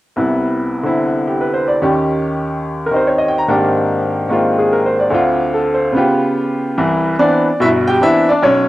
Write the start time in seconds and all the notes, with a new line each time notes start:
0.16 C2 C3 B3 E4
0.83 D3 C4 E4
1.27 G4
1.41 B4
1.54 C5
1.68 D5
1.82 D#2 D#3 C#4 G4
2.86 A#4
2.91 D#3 C4 D#4
2.96 C5
3.07 C#5
3.18 D#5
3.28 G5
3.38 A#5
3.48 G#2 D#3 A#3 C4 D4 G4
4.29 D#3 G#3 A#3 C4 F4
4.59 G#4
4.73 A#4
4.86 C5
5.00 D5
5.10 D2 D3 C4
5.14 F4
5.54 A4
5.74 C5
5.93 C#3 B3 F4
5.98 G4
6.78 C2 E3
7.19 E3 B3 C4 D4 D5
7.60 G1 B2 E4 E5
7.88 G4 G5
8.01 E3 B3 C4 D4 E4 E5
8.29 D4 D5
8.42 B1 C#4 C#5